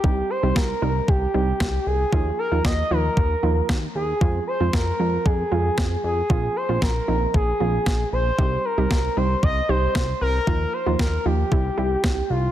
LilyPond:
<<
  \new Staff \with { instrumentName = "Analog synth lead" } { \time 4/4 \key c \phrygian \tempo 4 = 115 g'8 c''8 bes'4 g'4. aes'8~ | aes'8 bes'8 ees''8 bes'4. r8 aes'8~ | aes'8 c''8 bes'4 aes'4. aes'8~ | aes'8 c''8 bes'4 aes'4. c''8~ |
c''8 bes'4 c''8 ees''8 c''4 bes'8~ | bes'8 c''8 bes'8 g'2 f'8 | }
  \new Staff \with { instrumentName = "Synth pluck" } { \time 4/4 \key c \phrygian <g c' ees' g'>8. <g c' ees' g'>8. <g c' ees' bes'>8. r16 <g c' ees' g'>4~ <g c' ees' g'>16 r16 | <f bes ees' f'>8. <f bes ees' f'>8. <f bes ees' f'>8. r16 <f bes ees' f'>4~ <f bes ees' f'>16 r16 | <f aes c' f'>8. <f aes c' f'>8. <f aes c' f'>8. r16 <f aes c' f'>4~ <f aes c' f'>16 r16 | <f bes c' f'>8. <f bes c' f'>8. <f bes c' ees'>8. r16 <f bes c' f'>4~ <f bes c' f'>16 r16 |
<g c' ees' g'>8. <g c' ees' g'>8. <g c' ees' g'>8. r16 <g c' ees' g'>4~ <g c' ees' g'>16 r16 | <f bes ees' f'>8. <f bes ees' f'>8. <f bes ees' f'>8 <g c' e' g'>8 <g c' e' g'>4~ <g c' e' g'>16 r16 | }
  \new Staff \with { instrumentName = "Analog synth bass" } { \clef bass \time 4/4 \key c \phrygian c,8 r16 c,16 c,8 c,8 c,8 c,8 c,8 c,8 | ees,8 r16 ees,16 ees,8 ees,8 ees,8 ees,8 ees,8 ees,8 | f,8 r16 f,16 f,8 f,8 f,8 f,8 f,8 f,8 | bes,,8 r16 bes,,16 bes,,8 bes,,8 bes,,8 bes,,8 bes,,8 bes,,8 |
c,8 r16 c,16 c,8 c,8 c,8 c,8 c,8 c,8 | ees,8 r16 ees,16 ees,8 ees,8 c,8 c,8 c,8 c,8 | }
  \new DrumStaff \with { instrumentName = "Drums" } \drummode { \time 4/4 bd4 <bd sn>4 bd4 <bd sn>4 | bd4 <bd sn>4 bd4 <bd sn>4 | bd4 <bd sn>4 bd4 <bd sn>4 | bd4 <bd sn>4 bd4 <bd sn>4 |
bd4 <bd sn>4 bd4 <bd sn>4 | bd4 <bd sn>4 bd4 <bd sn>4 | }
>>